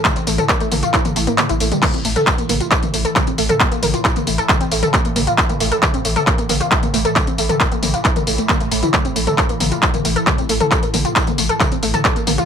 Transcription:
<<
  \new Staff \with { instrumentName = "Synth arpeggio sound" } { \time 4/4 \key c \mixolydian \tempo 4 = 135 a16 c'16 a16 a'16 bes16 a16 bes16 f'16 e'16 bes16 a16 bes16 bes16 e'16 a16 g16 | a16 c'16 a16 a'16 bes16 bes16 bes16 f'16 e'16 bes16 a16 a'16 a16 c'16 a16 a'16 | bes16 bes16 bes16 f'16 e'16 bes16 a16 a'16 a16 c'16 a16 a'16 bes16 bes16 bes16 f'16 | e'16 bes16 a16 a'16 a16 c'16 a16 a'16 bes16 bes16 bes16 f'16 e'16 bes16 a16 a'16 |
a16 c'16 a16 a'16 bes16 bes16 bes16 f'16 e'16 bes16 a16 a16 bes16 a16 a16 e'16 | a16 c'16 a16 a'16 a'16 bes16 bes16 f'16 e'16 bes16 a16 a'16 a16 c'16 a16 a'16 | a'16 bes16 bes16 f'16 e'16 bes16 a16 a'16 a16 c'16 a16 a'16 a'16 bes16 bes16 f'16 | }
  \new Staff \with { instrumentName = "Synth drone" } { \clef bass \time 4/4 \key c \mixolydian <a, e>1 | <a, e>1~ | <a, e>1~ | <a, e>1~ |
<a, e>1~ | <a, e>1~ | <a, e>1 | }
  \new Staff \with { instrumentName = "Sub bass" } { \clef bass \time 4/4 \key c \mixolydian r16 a,,16 a,,16 r8 a,,16 a,,16 r8 a,,16 a,,16 r8 a,,16 a,,16 r16 | r16 a,,16 a,,16 r8 a,,16 a,,16 r8 a,,16 a,,16 r8 a,,16 a,,16 r16 | r16 a,,16 a,,16 r8 a,,16 a,,16 r8 a,,16 a,,16 r8 a,,16 a,,16 r16 | r16 a,,16 a,,16 r8 a,,16 a,,16 r8 a,,16 a,,16 r8 a,,16 a,,16 r16 |
r16 a,,16 a,,16 r8 a,,16 a,,16 r8 a,,16 a,,16 r8 a,,16 a,,16 r16 | r16 a,,16 a,,16 r8 a,,16 a,,16 r8 a,,16 a,,16 r8 a,,16 a,,16 r16 | r16 a,,16 a,,16 r8 a,,16 a,,16 r8 a,,16 a,,16 r8 a,,16 a,,16 r16 | }
  \new DrumStaff \with { instrumentName = "Drums" } \drummode { \time 4/4 <hc hh bd tamb toml>16 <hh tamb>16 <hho tamb>16 <hh tamb toml>16 <hc hh bd tamb>16 <hh tamb>16 <hho tamb toml>16 <hh tamb>16 <hc hh bd tamb>16 <hh tamb toml>16 <hho tamb>16 <hh tamb>16 <hc hh tamb toml>16 <hh tamb>16 <hho tamb>16 <hh tamb toml>16 | <hc cymc hh bd tamb toml>16 <hh tamb>16 <hho tamb>16 <hh tamb toml>16 <hc hh bd tamb>16 <hh tamb>16 <hho tamb toml>16 <hh tamb>16 <hc hh bd tamb>16 <hh tamb toml>16 <hho tamb>16 <hh tamb>16 <hc hh bd tamb toml>16 <hh tamb>16 <hho tamb>16 <hh tamb toml>16 | <hc hh bd tamb>16 <hh tamb>16 <hho tamb toml>16 <hh tamb>16 <hc hh bd tamb>16 <hh tamb toml>16 <hho tamb>16 <hh tamb>16 <hc hh bd tamb toml>16 <hh tamb>16 <hho tamb>16 <hh tamb toml>16 <hc hh bd tamb>16 <hh tamb>16 <hho tamb toml>16 <hh tamb>16 | <hc hh bd tamb>16 <hh tamb toml>16 <hho tamb>16 <hh tamb>16 <hc hh bd tamb toml>16 <hh tamb>16 <hho tamb>16 <hh tamb toml>16 <hc hh bd tamb>16 <hh tamb>16 <hho tamb toml>16 <hh tamb>16 <hc hh bd tamb>16 <hh tamb toml>16 <hho tamb>16 <hh tamb>16 |
<hc hh bd tamb toml>16 <hh tamb>16 <hho tamb>16 <hh tamb toml>16 <hc hh bd tamb>16 <hh tamb>16 <hho tamb toml>16 <hh tamb>16 <hc hh bd tamb>16 <hh tamb toml>16 <hho tamb>16 <hh tamb>16 <hc hh bd tamb toml>16 <hh tamb>16 <hho tamb>16 <hh tamb toml>16 | <hc hh bd tamb toml>16 <hh tamb>16 <hho tamb>16 <hh tamb toml>16 <hc hh bd tamb>16 <hh tamb>16 <hho tamb toml>16 <hh tamb>16 <hc hh bd tamb>16 <hh tamb toml>16 <hho tamb>16 <hh tamb>16 <hc hh bd tamb toml>16 <hh tamb>16 <hho tamb>16 <hh tamb toml>16 | <hc hh bd tamb>16 <hh tamb>16 <hho tamb toml>16 <hh tamb>16 <hc hh bd tamb>16 <hh tamb toml>16 <hho tamb>16 <hh tamb>16 <hc hh bd tamb toml>16 <hh tamb>16 <hho tamb>16 <hh tamb toml>16 <hc hh bd tamb>16 <hh tamb>16 <hho tamb toml>16 <hh tamb>16 | }
>>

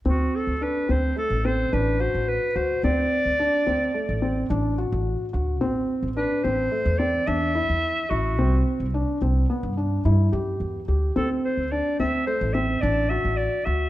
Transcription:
<<
  \new Staff \with { instrumentName = "Clarinet" } { \time 5/4 \key d \mixolydian \tempo 4 = 108 fis'8 a'8 b'8 c''8 a'8 c''8 b'8 c''8 b'8 c''8 | d''2. r2 | r4 b'8 c''4 d''8 e''4. fis'8~ | fis'8 r1 r8 |
a'8 c''8 d''8 e''8 c''8 e''8 d''8 e''8 d''8 e''8 | }
  \new Staff \with { instrumentName = "Felt piano" } { \time 5/4 \key d \mixolydian c'4 d'8 c'8 a8 c'8 d'8 fis'4 fis'8 | c'4 d'8 c'8 a8 c'8 d'8 fis'4 fis'8 | c'4 d'8 c'8 a8 c'8 d'8 e'4 e'8 | c'4 d'8 c'8 b8 d'8 e'8 g'4 g'8 |
c'4 d'8 c'8 a8 c'8 d'8 fis'4 fis'8 | }
  \new Staff \with { instrumentName = "Upright bass" } { \clef bass \time 5/4 \key d \mixolydian d,8 r16 d,8 r16 d,8 r16 a,,8. a,,8. a,,8 r16 d,8 | d,8 r16 d,8 r16 d,8 r16 a,,8. a,,8. a,,8 r16 d,8 | a,,8 r16 a,,8 r16 a,,8 r16 e,8. e,8. e,8 r16 a,,8 | c,8 r16 c,8 r16 c,8 r16 g,8. g,8 fis,8 e,8 d,8 |
d,8 r16 d,8 r16 d,8 r16 a,,8. a,,8. a,,8 r16 d,8 | }
>>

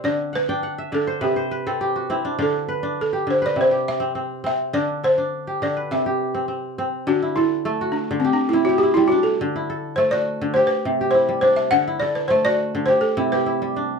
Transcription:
<<
  \new Staff \with { instrumentName = "Balafon" } { \time 4/4 \key d \mixolydian \tempo 4 = 103 d''8 b'4 a'8 g'4. r8 | a'4 a'8 c''16 d''16 c''8 e''4 e''8 | d''8 c''4 d''8 e''4. r8 | fis'8 e'4 d'8 c'16 d'16 e'16 fis'16 g'16 e'16 fis'16 a'16~ |
a'16 r8. c''16 d''8. c''16 b'8. c''8 c''16 e''16 | fis''8 d''16 b'16 c''16 d''8. c''16 a'8 b'4 r16 | }
  \new Staff \with { instrumentName = "Kora" } { \time 4/4 \key d \mixolydian << { r8 fis''16 g''16 fis''16 e''16 d''16 c''16 b'16 c''16 b'16 a'16 g'16 fis'16 e'16 d'16~ | d'16 r2. r8. | r1 | r1 |
r1 | r1 | } \\ { r1 | d'8 b'8. g'8 b'8 g'8. c'8. r16 | d'8 a'8. g'8 b'8 g'8. c'8. r16 | r16 e'16 a'8 a'16 fis'8. g'8 e'16 g'16 e'8 d'8~ |
d'16 e'16 a'8 a'16 fis'8. g'8. g'16 e'8 d'8~ | d'16 e'16 a'8 a'16 fis'8. g'8 e'16 g'16 e'8 d'8 | } >> }
  \new Staff \with { instrumentName = "Kora" } { \clef bass \time 4/4 \key d \mixolydian d8 r16 d'8 r16 d8 c8 r16 c'8 r16 c'8 | d8 r16 d'8 r16 d8 c8 r16 c'8 r16 c'8 | d8 r16 d'8 r16 d8 c8 r16 c'8 r16 c'8 | d8 r8 a8 r16 d16 r8 c8 r16 g8 r16 |
d8 r8 a8 r16 d16 r8 c8 r16 g8 r16 | d8 r8 a8 r16 d16 r8 c8 r16 g8 r16 | }
>>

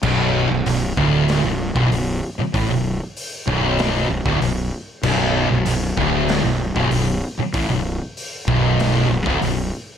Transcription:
<<
  \new Staff \with { instrumentName = "Distorted electric guitar" } { \clef bass \time 4/4 \key b \minor \tempo 4 = 96 b,,8. b,,16 b,,8 d,8. b,,8 b,,16 b,,8 r8 | a,16 b,,8 r8. b,,4 b,,16 d,16 b,,8 r8 | b,,8. b,,16 b,,8 d,8. b,,8 b,,16 b,,8 r8 | a,16 b,,8 r8. b,,4 b,,16 d,16 b,,8 r8 | }
  \new Staff \with { instrumentName = "Distorted electric guitar" } { \clef bass \time 4/4 \key b \minor b,,8. b,,16 b,,8 d,8. b,,8 b,,16 b,,8 r8 | a,16 b,,8 r8. b,,4 b,,16 d,16 b,,8 r8 | b,,8. b,,16 b,,8 d,8. b,,8 b,,16 b,,8 r8 | a,16 b,,8 r8. b,,4 b,,16 d,16 b,,8 r8 | }
  \new Staff \with { instrumentName = "Distorted electric guitar" } { \clef bass \time 4/4 \key b \minor b,,8. b,,16 b,,8 d,8. b,,8 b,,16 b,,8 r8 | a,16 b,,8 r8. b,,4 b,,16 d,16 b,,8 r8 | b,,8. b,,16 b,,8 d,8. b,,8 b,,16 b,,8 r8 | a,16 b,,8 r8. b,,4 b,,16 d,16 b,,8 r8 | }
  \new Staff \with { instrumentName = "Fingered electric bass" } { \clef bass \time 4/4 \key b \minor b,,,8. b,,,16 b,,,8 d,,8. b,,,8 b,,,16 b,,,8 r8 | a,,16 b,,,8 r8. b,,,4 b,,,16 d,,16 b,,,8 r8 | b,,,8. b,,,16 b,,,8 d,,8. b,,,8 b,,,16 b,,,8 r8 | a,,16 b,,,8 r8. b,,,4 b,,,16 d,,16 b,,,8 r8 | }
  \new DrumStaff \with { instrumentName = "Drums" } \drummode { \time 4/4 <cymc bd>4 hho8 bd8 <hho sn>8. <bd sn>16 hho4 | <hho bd>4 hho8 bd8 <hho sn>8. <bd sn>16 hho4 | <cymc bd>4 hho8 bd8 <hho sn>8. <bd sn>16 hho4 | <hho bd>4 hho8 bd8 <hho sn>8. <bd sn>16 hho4 | }
>>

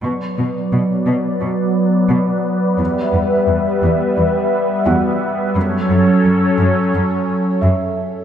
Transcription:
<<
  \new Staff \with { instrumentName = "Felt piano" } { \time 4/4 \key b \minor \tempo 4 = 87 cis'''2. r4 | r2. <fis' fis''>4~ | <fis' fis''>2 r4 e''4 | }
  \new Staff \with { instrumentName = "Analog synth pad" } { \time 4/4 \key b \minor << { <fis d''>1 | <g e''>1 | <fis cis''>1 | } \\ { <b b'>1~ | <b b'>1 | <cis' a'>1 | } >> }
  \new Staff \with { instrumentName = "Cello section" } { \clef bass \time 4/4 \key b \minor b,8 b,8 b,8 b,8 b,8 r8 b,8 r8 | e,8 e,8 e,8 e,8 e,8 r8 e,8 r8 | fis,8 fis,8 fis,8 fis,8 fis,8 r8 fis,8 r8 | }
>>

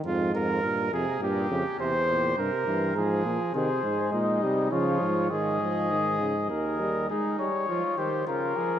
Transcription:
<<
  \new Staff \with { instrumentName = "Trumpet" } { \time 3/4 \key f \minor \tempo 4 = 102 r2. | r2. | \key aes \major c''4 ees''4 des''4 | ees''2 ees''4 |
aes'8 des''4 c''8 bes'4 | }
  \new Staff \with { instrumentName = "Flugelhorn" } { \time 3/4 \key f \minor f'8 bes'4 aes'8 g'4 | c''4 bes'4 aes'4 | \key aes \major aes'4 ees'4 f'4 | aes'2 bes'4 |
ees'4 f'8 g'8 f'8 aes'8 | }
  \new Staff \with { instrumentName = "Trombone" } { \clef bass \time 3/4 \key f \minor aes,4 bes,8 c8 bes,8 des8 | c8 bes,8 c8 e8 f4 | \key aes \major ees8 aes4 g8 f4 | ees8 f8 ees8 des8 ees8 g8 |
aes8 g8 f8 ees8 des8 f8 | }
  \new Staff \with { instrumentName = "Euphonium" } { \clef bass \time 3/4 \key f \minor f,8 f,8 g,8 f,8 g,8 f,8 | e,4 g,8 g,8 aes,8 bes,8 | \key aes \major c8 aes,8 bes,8 c8 des8 aes,8 | aes,2 ees,4 |
r2. | }
>>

